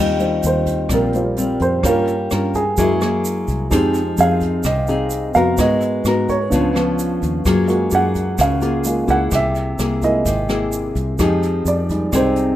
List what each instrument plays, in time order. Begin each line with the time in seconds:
Already playing: fingered electric bass D#2, nylon-string guitar D#3 G3 C4 F4
0.19 grand piano G3 C4 F4, closed hi-hat, shaker
0.43 fingered electric bass D#2, closed hi-hat, shaker
0.47 grand piano C5
0.66 kick, closed hi-hat, shaker
0.89 fingered electric bass A#1, nylon-string guitar A#2 G3 C4 F4, kick, cross-stick, closed hi-hat, shaker
0.94 grand piano A#4
1.13 grand piano G3 C4 F4, closed hi-hat, shaker
1.36 nylon-string guitar G3 C4 F4, closed hi-hat, shaker
1.60 fingered electric bass F2, grand piano C5, kick, closed hi-hat, shaker
1.83 fingered electric bass G2, nylon-string guitar G3 C#4 F4 A#4, grand piano A#3 C#4 F4, kick, cross-stick, closed hi-hat, shaker
1.88 grand piano A#4
2.07 closed hi-hat, shaker
2.31 fingered electric bass G2, nylon-string guitar C#4 F4 A#4, cross-stick, closed hi-hat, shaker
2.54 grand piano G#4, kick, closed hi-hat, shaker
2.77 fingered electric bass F#2, nylon-string guitar F#3 A#3 E4 G#4, grand piano G#3 A#3 E4, kick, closed hi-hat, shaker
3.01 nylon-string guitar A#3 E4 G#4, cross-stick, closed hi-hat, shaker
3.25 closed hi-hat, shaker
3.48 fingered electric bass C2, kick, closed hi-hat, shaker
3.70 fingered electric bass F2, nylon-string guitar F3 C4 D#4 G#4, grand piano G#3 D#4 G4, kick, cross-stick, closed hi-hat, shaker
3.94 closed hi-hat, shaker
4.17 fingered electric bass F2, nylon-string guitar C4 D#4 G#4, grand piano F5, closed hi-hat, shaker
4.41 kick, closed hi-hat, shaker
4.63 fingered electric bass C2, nylon-string guitar C3, grand piano D#5, kick, cross-stick, closed hi-hat, shaker
4.87 nylon-string guitar C4 D#4 G#4, closed hi-hat, shaker
5.10 closed hi-hat, shaker
5.34 fingered electric bass F2, nylon-string guitar B3 F#4 A#4, grand piano F5, kick, closed hi-hat, shaker
5.57 fingered electric bass G#2, nylon-string guitar G#3, grand piano B3 F#4 D#5, kick, cross-stick, closed hi-hat, shaker
5.81 closed hi-hat, shaker
6.05 fingered electric bass G#2, nylon-string guitar B3 F#4 A#4, cross-stick, closed hi-hat, shaker
6.29 grand piano C#5, kick, closed hi-hat, shaker
6.50 fingered electric bass C#2, nylon-string guitar C#3 F3 B3 D4, grand piano B3 D4 F4, kick, closed hi-hat, shaker
6.75 nylon-string guitar F3 B3 D4, cross-stick, closed hi-hat, shaker
6.99 closed hi-hat, shaker
7.22 fingered electric bass D#2, kick, closed hi-hat, shaker
7.45 fingered electric bass F#2, nylon-string guitar F#3 A#3 F4 G#4, kick, cross-stick, closed hi-hat, shaker
7.68 grand piano G#3 A#3 F#4, closed hi-hat, shaker
7.91 fingered electric bass F#2, nylon-string guitar A#3 F4 G#4, closed hi-hat, shaker
7.95 grand piano F#5
8.15 kick, closed hi-hat, shaker
8.38 fingered electric bass C#2, nylon-string guitar C#3, grand piano F5, kick, cross-stick, closed hi-hat, shaker
8.61 nylon-string guitar A#3 F4 G#4, closed hi-hat, shaker
8.84 grand piano G#3 A#3 F4, closed hi-hat, shaker
9.08 fingered electric bass C#2, nylon-string guitar A#3 E4 G#4, grand piano F#5, kick, closed hi-hat, shaker
9.31 fingered electric bass C2, nylon-string guitar C3, grand piano E5, kick, cross-stick, closed hi-hat, shaker
9.55 closed hi-hat, shaker
9.79 fingered electric bass C2, nylon-string guitar A#3 E4 G#4, cross-stick, closed hi-hat, shaker
10.02 grand piano G#3 A#3 E4 D#5, kick, closed hi-hat, shaker
10.26 fingered electric bass G#1, nylon-string guitar C3, kick, closed hi-hat, shaker
10.49 nylon-string guitar A#3 E4 G#4, cross-stick, closed hi-hat, shaker
10.72 closed hi-hat, shaker
10.95 fingered electric bass C2, kick, closed hi-hat, shaker
11.19 fingered electric bass F2, nylon-string guitar F3 C4 D#4 G#4, grand piano G#3 D#4 G4, kick, cross-stick, closed hi-hat, shaker
11.43 closed hi-hat, shaker
11.65 fingered electric bass F2, grand piano D5, closed hi-hat, shaker
11.89 grand piano G3 G#3 D#4, kick, closed hi-hat, shaker
12.12 fingered electric bass C2, nylon-string guitar C3 C4 D#4 G#4, grand piano C5, kick, cross-stick, closed hi-hat, shaker
12.36 closed hi-hat, shaker